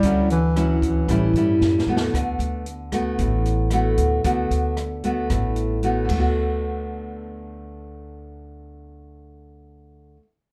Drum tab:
CC |------------------------|------------------------|---------------------x--|------------------------|
HH |x--x--x--x--x--x--------|x--x--x--x--x--x--x--x--|x--x--x--x--x--x--x-----|------------------------|
SD |------r-----r-----o-o-o-|r--------r--------r-----|------r-----r-----------|------------------------|
BD |o--------o--o-----------|o--------o--o--------o--|o--------o--o--------o--|------------------------|

CC |------------------------|
HH |------------------------|
SD |------------------------|
BD |------------------------|